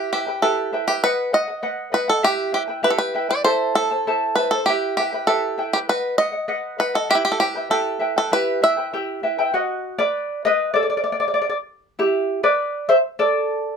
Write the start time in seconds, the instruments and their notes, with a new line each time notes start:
Already playing: charango E4 G4 B4 E5 G5, five-string banjo G4
0.13 charango E4 B4 E5 G5, five-string banjo G4
0.27 charango E4 B4 G5
0.42 charango E4 G4 B4 E5 G5, five-string banjo A4
0.73 charango E4 B4 E5 G5
0.88 charango E4 B4 G5, five-string banjo G4
1.04 five-string banjo B4, charango B4 D#5 F#5
1.32 charango B4 D#5 F#5, five-string banjo D#5
1.48 charango D#5 F#5
1.63 charango B4 D#5 F#5
1.92 charango B4 D#5 F#5, five-string banjo B4
2.08 five-string banjo A4, charango D#5 F#5
2.23 charango E4 G4 B4 E5 G5, five-string banjo G4
2.52 charango E4 B4 E5 G5, five-string banjo G4
2.68 charango E4 B4 G5
2.83 charango E4 G4 B4 E5 G5, five-string banjo B4
2.90 five-string banjo A4
2.98 five-string banjo B4
3.14 charango E4 B4 E5 G5
3.29 charango E4 B4 G5, five-string banjo D5
3.44 charango E4 A4 C5 E5 A5, five-string banjo C5
3.75 charango E4 C5 E5 A5, five-string banjo A4
3.91 charango E4 C5 A5
4.07 charango E4 A4 C5 E5 A5
4.36 charango E4 C5 E5 A5, five-string banjo B4
4.51 charango E4 C5 A5, five-string banjo A4
4.66 charango E4 G4 B4 E5 G5, five-string banjo G4
4.97 charango E4 B4 E5 G5, five-string banjo G4
5.12 charango E4 B4 G5
5.27 charango E4 G4 B4 E5 G5, five-string banjo A4
5.58 charango E4 B4 E5 G5
5.73 charango E4 B4 G5, five-string banjo G4
5.89 charango B4 D#5 F#5, five-string banjo B4
6.18 charango B4 D#5 F#5, five-string banjo D#5
6.32 charango D#5 F#5
6.48 charango B4 D#5 F#5
6.78 charango B4 D#5 F#5, five-string banjo B4
6.94 five-string banjo A4, charango D#5 F#5
7.09 charango E4 G4 B4 E5 G5, five-string banjo G4
7.15 five-string banjo E4
7.25 five-string banjo G4
7.32 five-string banjo A4
7.40 charango E4 B4 E5 G5, five-string banjo G4
7.55 charango E4 B4 G5
7.70 charango E4 G4 B4 E5 G5, five-string banjo A4
7.99 charango E4 B4 E5 G5
8.16 charango E4 B4 G5, five-string banjo A4
8.32 charango E4 G4 B4 E5 G5, five-string banjo B4
8.62 charango E4 B4 E5 G5, five-string banjo E5
8.77 charango E4 B4 G5
8.93 charango E4 G4 B4 E5 G5
9.23 charango E4 B4 E5 G5
9.38 charango E4 B4 G5
9.54 charango F#4 D#5
9.99 charango B4 D5
10.45 charango B4 D#5
10.74 charango A4 D5
10.83 charango D5
10.90 charango D5
10.97 charango D5
11.04 charango D5
11.12 charango D5
11.20 charango D5
11.28 charango D5
11.34 charango D5
11.42 charango D5
11.50 charango D5
11.99 charango E4 G4
12.43 charango B4 D5
12.89 charango C5 E5
13.19 charango A4 D5